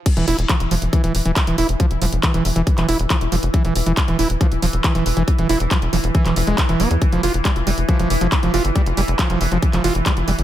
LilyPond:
<<
  \new Staff \with { instrumentName = "Acid bass" } { \clef bass \time 4/4 \tempo 4 = 138 r16 e16 e'16 r16 f16 r16 f16 r16 e16 e16 r16 e16 r16 e16 e'16 r16 | f16 r16 f16 r16 e16 e16 r16 e16 r16 e16 e'16 r16 f16 r16 f16 r16 | e16 e16 r16 e16 r16 e16 e'16 r16 f16 r16 f16 r16 e16 e16 r16 e16 | r16 e16 e'16 r16 f16 r16 f16 r16 e16 e16 r16 gis16 r16 e16 b16 r16 |
r16 f16 f'16 r16 g16 r16 g16 r16 f16 f16 r16 f16 r16 f16 f'16 r16 | g16 r16 g16 r16 f16 f16 r16 f16 r16 f16 f'16 r16 g16 r16 g16 r16 | }
  \new Staff \with { instrumentName = "Synth texture" } { \clef bass \time 4/4 e1~ | e1~ | e1~ | e1~ |
e1~ | e1 | }
  \new Staff \with { instrumentName = "Analog synth bass" } { \clef bass \time 4/4 r16 e,,16 e,,16 e,,16 r16 e,,16 e,,16 e,,16 r16 e,,16 e,,16 e,,16 r16 e,,16 e,,16 f,,16 | r16 e,,16 e,,16 e,,16 r16 e,,16 e,,16 e,,16 r16 e,,16 e,,16 e,,16 r16 e,,16 e,,16 f,,16 | r16 e,,16 e,,16 e,,16 r16 e,,16 e,,16 e,,16 r16 e,,16 e,,16 e,,16 r16 e,,16 e,,16 f,,16 | r16 e,,16 e,,16 e,,16 r16 e,,16 e,,16 e,,16 r16 e,,16 e,,16 e,,16 r16 e,,16 e,,16 e,16 |
r16 f,,16 f,,16 f,,16 r16 f,,16 f,,16 f,,16 r16 f,,16 f,,16 f,,16 r16 f,,16 f,,16 g,,16 | r16 f,,16 f,,16 f,,16 r16 f,,16 f,,16 f,,16 r16 f,,16 f,,16 f,,16 r16 f,,16 f,,16 g,,16 | }
  \new DrumStaff \with { instrumentName = "Drums" } \drummode { \time 4/4 <cymc hh bd>16 hh16 hho16 hh16 <hc hh bd>16 hh16 hho16 hh16 <hh bd>16 hh16 hho16 hh16 <hc hh bd>16 hh16 hho16 hh16 | <hh bd>16 hh16 hho16 hh16 <hc hh bd>16 hh16 hho16 hh16 <hh bd>16 <hc hh>16 hho16 hh16 <hc hh bd>16 hh16 hho16 hh16 | <hh bd>16 hh16 hho16 hh16 <hc hh bd>16 hh16 hho16 hh16 <hh bd>16 hh16 hho16 hh16 <hc hh bd>16 hh16 hho16 hh16 | <hh bd>16 hh16 hho16 hh16 <hc hh bd>16 hh16 hho16 hh16 <hh bd>16 <hc hh>16 hho16 hh16 <hc hh bd>16 hh16 hho16 hh16 |
<hh bd>16 hh16 hho16 hh16 <hc hh bd>16 hh16 hho16 hh16 <hh bd>16 hh16 hho16 hh16 <hc hh bd>16 hh16 hho16 hh16 | <hh bd>16 hh16 hho16 hh16 <hc hh bd>16 hh16 hho16 hh16 <hh bd>16 <hc hh>16 hho16 hh16 <hc hh bd>16 hh16 hho16 hh16 | }
>>